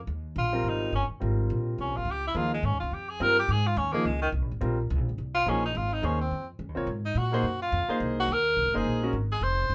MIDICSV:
0, 0, Header, 1, 5, 480
1, 0, Start_track
1, 0, Tempo, 283019
1, 136, Time_signature, 4, 2, 24, 8
1, 16534, End_track
2, 0, Start_track
2, 0, Title_t, "Tenor saxophone"
2, 0, Program_c, 0, 66
2, 651, Note_on_c, 0, 65, 96
2, 1166, Note_on_c, 0, 63, 83
2, 1191, Note_off_c, 0, 65, 0
2, 1608, Note_off_c, 0, 63, 0
2, 1618, Note_on_c, 0, 61, 74
2, 1776, Note_off_c, 0, 61, 0
2, 3067, Note_on_c, 0, 61, 81
2, 3330, Note_on_c, 0, 65, 98
2, 3355, Note_off_c, 0, 61, 0
2, 3581, Note_on_c, 0, 67, 95
2, 3607, Note_off_c, 0, 65, 0
2, 3823, Note_off_c, 0, 67, 0
2, 3855, Note_on_c, 0, 64, 84
2, 4020, Note_on_c, 0, 65, 103
2, 4045, Note_off_c, 0, 64, 0
2, 4283, Note_off_c, 0, 65, 0
2, 4308, Note_on_c, 0, 56, 77
2, 4500, Note_on_c, 0, 61, 77
2, 4526, Note_off_c, 0, 56, 0
2, 4745, Note_off_c, 0, 61, 0
2, 4755, Note_on_c, 0, 65, 76
2, 4990, Note_on_c, 0, 67, 81
2, 5015, Note_off_c, 0, 65, 0
2, 5245, Note_on_c, 0, 68, 94
2, 5271, Note_off_c, 0, 67, 0
2, 5468, Note_on_c, 0, 70, 104
2, 5494, Note_off_c, 0, 68, 0
2, 5727, Note_off_c, 0, 70, 0
2, 5756, Note_on_c, 0, 67, 103
2, 5965, Note_on_c, 0, 68, 106
2, 5990, Note_off_c, 0, 67, 0
2, 6219, Note_on_c, 0, 65, 102
2, 6244, Note_off_c, 0, 68, 0
2, 6410, Note_on_c, 0, 61, 86
2, 6435, Note_off_c, 0, 65, 0
2, 6656, Note_on_c, 0, 58, 87
2, 6682, Note_off_c, 0, 61, 0
2, 6883, Note_on_c, 0, 56, 78
2, 6908, Note_off_c, 0, 58, 0
2, 7145, Note_off_c, 0, 56, 0
2, 7155, Note_on_c, 0, 51, 98
2, 7270, Note_off_c, 0, 51, 0
2, 9069, Note_on_c, 0, 65, 108
2, 9314, Note_on_c, 0, 61, 88
2, 9339, Note_off_c, 0, 65, 0
2, 9569, Note_off_c, 0, 61, 0
2, 9590, Note_on_c, 0, 63, 88
2, 9785, Note_on_c, 0, 65, 97
2, 9811, Note_off_c, 0, 63, 0
2, 10064, Note_on_c, 0, 63, 97
2, 10090, Note_off_c, 0, 65, 0
2, 10263, Note_on_c, 0, 61, 80
2, 10288, Note_off_c, 0, 63, 0
2, 10524, Note_off_c, 0, 61, 0
2, 10533, Note_on_c, 0, 60, 82
2, 10965, Note_off_c, 0, 60, 0
2, 11965, Note_on_c, 0, 63, 82
2, 12176, Note_on_c, 0, 66, 96
2, 12202, Note_off_c, 0, 63, 0
2, 12916, Note_off_c, 0, 66, 0
2, 12927, Note_on_c, 0, 65, 95
2, 13545, Note_off_c, 0, 65, 0
2, 13907, Note_on_c, 0, 66, 103
2, 14130, Note_on_c, 0, 70, 107
2, 14155, Note_off_c, 0, 66, 0
2, 14852, Note_off_c, 0, 70, 0
2, 14863, Note_on_c, 0, 68, 94
2, 15473, Note_off_c, 0, 68, 0
2, 15806, Note_on_c, 0, 68, 99
2, 15998, Note_on_c, 0, 72, 102
2, 16024, Note_off_c, 0, 68, 0
2, 16534, Note_off_c, 0, 72, 0
2, 16534, End_track
3, 0, Start_track
3, 0, Title_t, "Grand piano"
3, 0, Program_c, 1, 0
3, 882, Note_on_c, 1, 55, 62
3, 900, Note_on_c, 1, 60, 69
3, 904, Note_on_c, 1, 65, 60
3, 915, Note_on_c, 1, 70, 79
3, 1529, Note_off_c, 1, 55, 0
3, 1538, Note_off_c, 1, 60, 0
3, 1540, Note_off_c, 1, 65, 0
3, 1546, Note_off_c, 1, 70, 0
3, 2037, Note_on_c, 1, 55, 52
3, 2045, Note_on_c, 1, 60, 48
3, 2058, Note_on_c, 1, 65, 50
3, 2069, Note_on_c, 1, 70, 53
3, 3370, Note_off_c, 1, 55, 0
3, 3374, Note_off_c, 1, 60, 0
3, 3380, Note_off_c, 1, 65, 0
3, 3386, Note_off_c, 1, 70, 0
3, 3978, Note_on_c, 1, 53, 57
3, 3985, Note_on_c, 1, 58, 57
3, 3993, Note_on_c, 1, 63, 56
3, 4001, Note_on_c, 1, 68, 66
3, 4233, Note_off_c, 1, 53, 0
3, 4237, Note_off_c, 1, 58, 0
3, 4241, Note_off_c, 1, 63, 0
3, 4245, Note_off_c, 1, 68, 0
3, 5423, Note_on_c, 1, 55, 70
3, 5431, Note_on_c, 1, 60, 73
3, 5437, Note_on_c, 1, 65, 65
3, 5453, Note_on_c, 1, 70, 81
3, 5676, Note_off_c, 1, 55, 0
3, 5680, Note_off_c, 1, 60, 0
3, 5683, Note_off_c, 1, 65, 0
3, 5691, Note_off_c, 1, 70, 0
3, 6658, Note_on_c, 1, 53, 76
3, 6663, Note_on_c, 1, 58, 76
3, 6675, Note_on_c, 1, 63, 81
3, 6690, Note_on_c, 1, 68, 86
3, 6838, Note_off_c, 1, 53, 0
3, 6840, Note_off_c, 1, 58, 0
3, 6846, Note_off_c, 1, 63, 0
3, 6854, Note_off_c, 1, 68, 0
3, 7812, Note_on_c, 1, 55, 65
3, 7814, Note_on_c, 1, 60, 58
3, 7825, Note_on_c, 1, 65, 60
3, 7839, Note_on_c, 1, 70, 64
3, 8070, Note_off_c, 1, 55, 0
3, 8071, Note_off_c, 1, 60, 0
3, 8076, Note_off_c, 1, 65, 0
3, 8084, Note_off_c, 1, 70, 0
3, 9264, Note_on_c, 1, 53, 68
3, 9280, Note_on_c, 1, 58, 64
3, 9284, Note_on_c, 1, 63, 64
3, 9295, Note_on_c, 1, 68, 73
3, 9516, Note_off_c, 1, 53, 0
3, 9524, Note_off_c, 1, 58, 0
3, 9526, Note_off_c, 1, 63, 0
3, 9531, Note_off_c, 1, 68, 0
3, 10211, Note_on_c, 1, 58, 62
3, 10224, Note_on_c, 1, 63, 53
3, 10232, Note_on_c, 1, 68, 60
3, 10241, Note_on_c, 1, 72, 65
3, 10469, Note_off_c, 1, 58, 0
3, 10476, Note_off_c, 1, 63, 0
3, 10480, Note_off_c, 1, 68, 0
3, 10485, Note_off_c, 1, 72, 0
3, 11448, Note_on_c, 1, 60, 65
3, 11458, Note_on_c, 1, 65, 59
3, 11469, Note_on_c, 1, 70, 60
3, 11485, Note_on_c, 1, 73, 75
3, 11632, Note_off_c, 1, 60, 0
3, 11637, Note_off_c, 1, 65, 0
3, 11643, Note_off_c, 1, 70, 0
3, 11651, Note_off_c, 1, 73, 0
3, 12411, Note_on_c, 1, 58, 78
3, 12419, Note_on_c, 1, 63, 65
3, 12433, Note_on_c, 1, 68, 75
3, 12447, Note_on_c, 1, 72, 89
3, 12594, Note_off_c, 1, 58, 0
3, 12598, Note_off_c, 1, 63, 0
3, 12605, Note_off_c, 1, 68, 0
3, 12612, Note_off_c, 1, 72, 0
3, 13371, Note_on_c, 1, 58, 78
3, 13379, Note_on_c, 1, 63, 70
3, 13386, Note_on_c, 1, 68, 73
3, 13398, Note_on_c, 1, 72, 84
3, 14014, Note_off_c, 1, 58, 0
3, 14018, Note_off_c, 1, 63, 0
3, 14021, Note_off_c, 1, 68, 0
3, 14027, Note_off_c, 1, 72, 0
3, 14808, Note_on_c, 1, 58, 82
3, 14827, Note_on_c, 1, 63, 75
3, 14833, Note_on_c, 1, 68, 67
3, 14845, Note_on_c, 1, 72, 74
3, 15266, Note_off_c, 1, 58, 0
3, 15275, Note_off_c, 1, 63, 0
3, 15279, Note_off_c, 1, 68, 0
3, 15284, Note_off_c, 1, 72, 0
3, 15300, Note_on_c, 1, 56, 65
3, 15318, Note_on_c, 1, 61, 66
3, 15323, Note_on_c, 1, 66, 68
3, 15337, Note_on_c, 1, 70, 70
3, 15478, Note_off_c, 1, 56, 0
3, 15487, Note_off_c, 1, 61, 0
3, 15489, Note_off_c, 1, 66, 0
3, 15496, Note_off_c, 1, 70, 0
3, 16534, End_track
4, 0, Start_track
4, 0, Title_t, "Upright bass"
4, 0, Program_c, 2, 32
4, 123, Note_on_c, 2, 39, 90
4, 595, Note_off_c, 2, 39, 0
4, 605, Note_on_c, 2, 34, 93
4, 1077, Note_off_c, 2, 34, 0
4, 1084, Note_on_c, 2, 32, 83
4, 1556, Note_off_c, 2, 32, 0
4, 1566, Note_on_c, 2, 31, 85
4, 1834, Note_off_c, 2, 31, 0
4, 2061, Note_on_c, 2, 32, 85
4, 2525, Note_off_c, 2, 32, 0
4, 2542, Note_on_c, 2, 34, 90
4, 3006, Note_off_c, 2, 34, 0
4, 3023, Note_on_c, 2, 36, 79
4, 3192, Note_off_c, 2, 36, 0
4, 3192, Note_on_c, 2, 34, 58
4, 3335, Note_off_c, 2, 34, 0
4, 3345, Note_on_c, 2, 32, 54
4, 3466, Note_off_c, 2, 32, 0
4, 3477, Note_on_c, 2, 37, 79
4, 3953, Note_off_c, 2, 37, 0
4, 3979, Note_on_c, 2, 39, 95
4, 4445, Note_off_c, 2, 39, 0
4, 4458, Note_on_c, 2, 44, 88
4, 4621, Note_off_c, 2, 44, 0
4, 4621, Note_on_c, 2, 39, 50
4, 4781, Note_off_c, 2, 39, 0
4, 4788, Note_on_c, 2, 37, 73
4, 4927, Note_off_c, 2, 37, 0
4, 4937, Note_on_c, 2, 41, 68
4, 5404, Note_off_c, 2, 41, 0
4, 5430, Note_on_c, 2, 43, 87
4, 5891, Note_off_c, 2, 43, 0
4, 5911, Note_on_c, 2, 44, 98
4, 6371, Note_off_c, 2, 44, 0
4, 6383, Note_on_c, 2, 39, 96
4, 6847, Note_off_c, 2, 39, 0
4, 6874, Note_on_c, 2, 37, 89
4, 7322, Note_off_c, 2, 37, 0
4, 7332, Note_on_c, 2, 36, 88
4, 7489, Note_off_c, 2, 36, 0
4, 7489, Note_on_c, 2, 34, 58
4, 7646, Note_off_c, 2, 34, 0
4, 7657, Note_on_c, 2, 32, 67
4, 7807, Note_off_c, 2, 32, 0
4, 7823, Note_on_c, 2, 34, 100
4, 8287, Note_off_c, 2, 34, 0
4, 8316, Note_on_c, 2, 37, 98
4, 8469, Note_off_c, 2, 37, 0
4, 8469, Note_on_c, 2, 34, 50
4, 8624, Note_off_c, 2, 34, 0
4, 8633, Note_on_c, 2, 32, 66
4, 8775, Note_off_c, 2, 32, 0
4, 8786, Note_on_c, 2, 36, 82
4, 9248, Note_off_c, 2, 36, 0
4, 9265, Note_on_c, 2, 34, 86
4, 9728, Note_off_c, 2, 34, 0
4, 9747, Note_on_c, 2, 32, 91
4, 10209, Note_off_c, 2, 32, 0
4, 10228, Note_on_c, 2, 39, 92
4, 10689, Note_off_c, 2, 39, 0
4, 10701, Note_on_c, 2, 41, 73
4, 11165, Note_off_c, 2, 41, 0
4, 11176, Note_on_c, 2, 42, 78
4, 11337, Note_off_c, 2, 42, 0
4, 11337, Note_on_c, 2, 39, 53
4, 11471, Note_off_c, 2, 39, 0
4, 11481, Note_on_c, 2, 36, 68
4, 11638, Note_off_c, 2, 36, 0
4, 11646, Note_on_c, 2, 44, 91
4, 12118, Note_off_c, 2, 44, 0
4, 12127, Note_on_c, 2, 46, 91
4, 12592, Note_off_c, 2, 46, 0
4, 12603, Note_on_c, 2, 42, 77
4, 13076, Note_off_c, 2, 42, 0
4, 13096, Note_on_c, 2, 41, 96
4, 13360, Note_off_c, 2, 41, 0
4, 13573, Note_on_c, 2, 36, 93
4, 14041, Note_off_c, 2, 36, 0
4, 14049, Note_on_c, 2, 39, 89
4, 14514, Note_off_c, 2, 39, 0
4, 14525, Note_on_c, 2, 36, 82
4, 14681, Note_on_c, 2, 32, 65
4, 14706, Note_off_c, 2, 36, 0
4, 14829, Note_off_c, 2, 32, 0
4, 14840, Note_on_c, 2, 30, 65
4, 14988, Note_off_c, 2, 30, 0
4, 14998, Note_on_c, 2, 34, 85
4, 15473, Note_off_c, 2, 34, 0
4, 15483, Note_on_c, 2, 32, 83
4, 15949, Note_off_c, 2, 32, 0
4, 15959, Note_on_c, 2, 29, 83
4, 16433, Note_off_c, 2, 29, 0
4, 16444, Note_on_c, 2, 30, 85
4, 16534, Note_off_c, 2, 30, 0
4, 16534, End_track
5, 0, Start_track
5, 0, Title_t, "Muted upright bass strokes"
5, 1857, Note_on_c, 9, 29, 40
5, 2027, Note_off_c, 9, 29, 0
5, 13369, Note_on_c, 9, 29, 41
5, 13539, Note_off_c, 9, 29, 0
5, 16534, End_track
0, 0, End_of_file